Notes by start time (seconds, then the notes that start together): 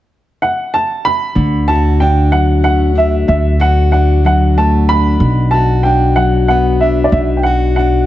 0.42 F#5
0.74 A5
1.05 B5
1.35 D2 D3
1.68 F#4 A5
2.00 D4 G5
2.32 F#3 F#5
2.64 A3 F#5
2.95 D4 E5
3.28 D2 D3 E5
3.60 F#4 F#5
3.92 D4 F#5
4.25 F#3 F#5
4.58 A3 A5
4.89 D4 B5
5.20 B1 B2
5.51 F#4 A5
5.83 D4 G5
6.16 F#3 F#5
6.48 B3 F#5
6.80 D4 E5
7.04 D5
7.12 B1 B2 E5
7.37 G5
7.43 F#4 F#5
7.76 D4 F#5